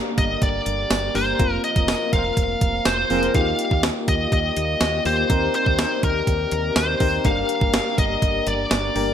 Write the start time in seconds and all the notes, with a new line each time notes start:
Already playing: D3 G3 A#3 D4 G4 A#4
0.18 G1 D#5, kick, closed hi-hat
0.42 G1 D5, kick, closed hi-hat
0.66 G1, closed hi-hat
0.90 G1, snare, closed hi-hat, tambourine
1.15 G1 A#3 D4 G4 A#4 C5, open hi-hat
1.39 F1 C3 F3 A#3 C4 F4 A#4, kick, closed hi-hat
1.64 D#5, closed hi-hat
1.76 F1, kick, closed hi-hat
1.88 snare, closed hi-hat, tambourine
2.12 F1 F3 C4 A#4 F5, kick, closed hi-hat
2.37 F1, kick, closed hi-hat
2.61 F1, kick, closed hi-hat
2.85 F1 C5, snare, closed hi-hat, tambourine
3.10 F1 F3 A#3 C4 F4 G#4 A#4, open hi-hat
3.23 closed hi-hat
3.34 D#2 D#3 G3 A#3 D#4 F4 G4 F5, kick, closed hi-hat
3.59 closed hi-hat
3.71 D#2, kick
3.83 snare, closed hi-hat, tambourine
4.08 D#2 D#5, kick, closed hi-hat
4.32 D#2 D#5, kick, closed hi-hat
4.57 D#2, closed hi-hat
4.80 D#2, snare, closed hi-hat, tambourine
5.05 D#2 A#3 D#4 F4 G4 C5, open hi-hat
5.29 D#2 C3 C4 D#4 G4 A#4, kick, closed hi-hat
5.54 C5, closed hi-hat
5.66 D#2, kick
5.79 snare, closed hi-hat, tambourine
6.03 D#2 A#4, kick, closed hi-hat
6.27 D#2, kick, closed hi-hat
6.51 D#2, closed hi-hat
6.76 D#2 C5, snare, closed hi-hat, tambourine
7.00 D#2 C4 D#4 G4 A#4, kick, open hi-hat
7.24 G1 D3 A#3 D4 G4 A#4 F5, kick, closed hi-hat
7.49 closed hi-hat
7.61 G1, kick
7.73 snare, closed hi-hat, tambourine
7.98 G1 D#5, kick, closed hi-hat
8.22 G1, kick, closed hi-hat
8.47 G1 D5, closed hi-hat
8.71 G1, snare, closed hi-hat, tambourine
8.95 G1 A#3 D4 G4 A#4, open hi-hat